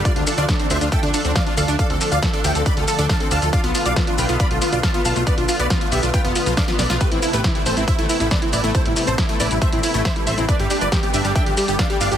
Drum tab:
HH |xxoxxxoxxxoxxxox|xxoxxxoxxxoxoxox|xxoxxxoxxxoxxxox|xxoxxxoxxxoxoxox|
SH |x-xxx-xxx-xxx-xx|x-xxx-xxx-xxx-xx|x-xxx-xxx-xxx-xx|x-xxx-xxx-xxx-xx|
SD |----o-------o---|----o-------o---|----o-------o---|----o-------oooo|
BD |o---o---o---o---|o---o---o---o---|o---o---o---o---|o---o---o---o---|

HH |xxoxxxoxxxoxxxox|xxoxxxoxxxoxoxox|xxoxxxoxxxoxxxox|
SH |x-xxx-xxx-xxx-xx|x-xxx-xxx-xxx-xx|x-xxx-xxx-xxx-xx|
SD |----o-------o---|----o-------o---|----o-------o---|
BD |o---o---o---o---|o---o---o---o---|o---o---o---o---|